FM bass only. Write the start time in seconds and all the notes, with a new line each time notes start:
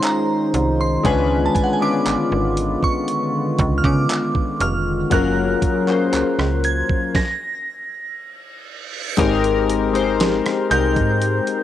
0.54 C2
1.05 C#2
2.06 G#1
2.32 G#1
3.59 C#2
3.84 C#3
4.60 F1
5.11 F#1
6.13 C#2
6.39 C#2
9.18 G#1
10.71 C2
10.97 G#2